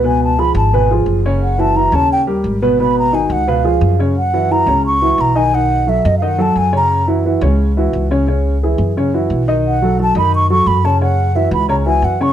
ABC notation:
X:1
M:4/4
L:1/16
Q:1/4=175
K:C#dor
V:1 name="Flute"
g2 =a2 b2 a2 g2 z6 | f2 =a2 ^a2 =a2 =g2 z6 | b2 a2 g2 f2 ^e6 z2 | f4 a4 c'4 a2 g2 |
f4 e2 d3/2 ^e/2 f2 =a2 g2 ^a2- | a2 z12 z2 | z16 | f4 =a2 b2 c'2 c'2 b2 a2 |
f4 e2 b2 a2 g2 f2 c'2 |]
V:2 name="Grand piano"
[B,,B,B]4 [^E,^EG]4 [B,,B,B]2 [E,EG]4 [C,Cc]2- | [C,Cc]2 [E,EF]2 [E,EF]2 [C,Cc]4 [=G,=GA]4 [B,,B,B]2 | [B,,B,B]4 [D,DF]4 [B,,B,B]2 [^E,^EG]4 [C,Cc]2 | z2 [E,EF]2 [E,EF]2 [C,Cc]4 [E,EF]4 [D,Dd]2 |
[D,Dd]4 [F,F=A]4 [D,Dd]2 [F,FA]4 [C,Cc]2- | [C,Cc]2 [E,EF]2 [E,EF]2 [C,Cc]4 [E,EF]4 [C,Cc]2 | [C,Cc]4 [E,EG]4 [C,Cc]2 [E,EF]4 [D,Dd]2- | [D,Dd]2 [F,F=A]2 [F,FA]2 [D,Dd]4 [F,FA]4 [C,Cc]2 |
[C,Cc]4 [E,EF]4 [C,Cc]2 [E,EF]4 [C,Cc]2 |]
V:3 name="Upright bass" clef=bass
C,,6 G,,,6 F,,,4- | F,,,6 D,,6 G,,,4- | G,,,6 C,,6 F,,4- | F,,6 C,,6 B,,,4- |
B,,,6 F,,6 F,,4- | F,,6 C,,6 C,,4- | C,,6 F,,6 B,,,4- | B,,,6 F,,6 F,,4- |
F,,6 C,,6 F,,4 |]